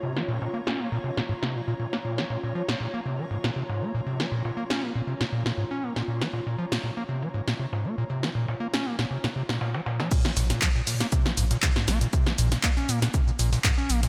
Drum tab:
CC |----------------|----------------|----------------|----------------|
HH |-----x----------|---x--o--x------|-----x----------|---x--o--x------|
SH |x-x-x---x---x-x-|x---x---x-x-x-x-|x---x---x-x-x-x-|x---x---x-x-x-x-|
CP |----------------|----------------|----------------|----------------|
SD |-o-o-o---o-o---o|-oo--o-----o-o--|-o-o-o---o-o---o|-oo--o-----o-o--|
BD |----------------|----------------|----------------|----------------|

CC |----------------|x---------------|----------------|
HH |----------------|x-oxx-oxxxoxx-ox|x-oxxxoxx-oox-ox|
SH |x-x-x-x-x-x-xxx-|xxxxxxxxxxxxxxxx|xxxxxxxxxxxxxxxx|
CP |----------------|----x-------x---|----x-------x---|
SD |-o-o-o-o-o-ooooo|-oooo--o-o-oooo-|-o-oo--o---oo--o|
BD |----------------|o---o---o---o---|o---o---o---o---|